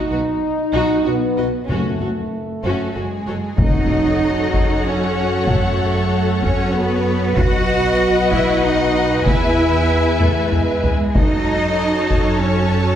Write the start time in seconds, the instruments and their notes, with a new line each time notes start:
Already playing: french horn section D#4
0.11 double bass section B1, cello section B2, viola section F#4, violin section F#4 B4
0.74 double bass section B1, cello section B2, violin section D#4 F#4, viola section F#4
1.05 double bass section B1, cello section B2, french horn section B3, violin section F#4 B4, viola section F#4
1.37 double bass section B1, cello section B2, viola section F#4, violin section B4 D#5
1.69 double bass section F#1, timpani F#2, cello section F#2, french horn section A3, violin section C#4 F#4, viola section F#4
2.00 double bass section F#1, cello section F#2, violin section F#4 A4, viola section F#4
2.63 double bass section F#1, cello section F#2 A3, violin section C#4 F#4 A4, viola section F#4
2.94 double bass section F#1, cello section F#2 G#3, viola section F#4, violin section F#4 G#4 A4
3.27 double bass section F#1, cello section F#2, viola section F#4, violin section A4 C#5
3.57 timpani F#2, double bass section F#2, cello section D#4, viola section F#4 A4, french horn section A4 C#5, violin section C#5 D#5 F#5, taiko, impact
4.54 taiko
4.85 cello section C#4, violin section C#5
5.48 cello section A3, violin section A4, taiko
6.43 cello section C#4, violin section C#5, taiko
6.74 cello section B3, violin section B4
7.37 double bass section B1, cello section F#4, viola section F#4 B4, french horn section B4 D#5, violin section D#5 F#5, taiko
8.31 cello section E4, violin section E5, taiko
8.63 cello section D#4, violin section D#5
9.26 double bass section E2, viola section E4, french horn section E4 B4, cello section E4, violin section E5 G#5, taiko
10.20 cello section A3, violin section A4, taiko low-mid
10.52 cello section G#3, violin section G#4, taiko low-mid
10.84 taiko low
11.14 double bass section F#2, cello section D#4, viola section F#4 A4, french horn section F#4 A4, violin section C#5 D#5 A5, taiko
12.10 taiko
12.41 cello section C#4, violin section C#5